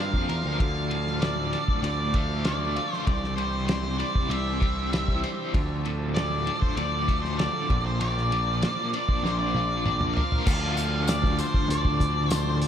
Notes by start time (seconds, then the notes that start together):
Already playing: F3 A#3 C4 D4 F4 A#4
0.00 G2 D4 F5
0.14 F2, kick
0.29 E2 A#4, ride
0.45 D2
0.60 D2 A3 A4 F5, kick, ride
0.90 A2, ride
1.07 snare
1.22 A2 D5, snare, ride
1.53 D3, snare, ride
1.68 kick
1.82 D2 A2 D5, ride
2.14 A3 F5, kick, ride
2.45 D3 D5, snare, ride
2.76 F4, ride
2.93 C5, snare
3.07 C2 C3 E3 C4 D4 G4 D5, kick, ride
3.24 snare
3.36 G3 C5, ride
3.67 C4 C5, snare, ride
3.98 E4 D5, ride
4.15 kick
4.29 C2 C4 E5, ride
4.60 G4, kick, ride
4.93 E4, snare, ride
5.08 kick
5.24 C5, ride
5.54 D2 F3 A3 D4 A4, kick, ride
5.85 A2, ride
6.15 A2 D5, snare, ride
6.46 D3, ride
6.61 C5, kick
6.77 D2 A2 D5, ride
7.08 A3, kick, snare, ride
7.22 C5, snare
7.39 D3 D5, snare, ride
7.70 A#1 A#2 C4 A#4, kick, ride
7.86 C5
8.00 A#2 D5, ride
8.18 snare
8.32 F3, ride
8.62 A#3, snare, ride
8.93 D4 D5, ride
9.09 kick
9.23 A#1 A#3 D5, snare
9.29 C5
9.39 D5
9.55 F4, high tom
9.86 D4, mid tom
10.01 mid tom
10.14 A#4 F5, floor tom
10.32 floor tom
10.45 D2 A2 D3 F3 A3 D4 F4 F5 A5, kick, crash, tambourine
10.77 closed hi-hat, tambourine
11.08 D5, snare, closed hi-hat, tambourine
11.24 kick, snare
11.39 C5, closed hi-hat, tambourine
11.54 kick
11.68 D2 D5, closed hi-hat
11.85 kick
12.00 kick, closed hi-hat, tambourine
12.30 C5, snare, closed hi-hat, tambourine
12.62 closed hi-hat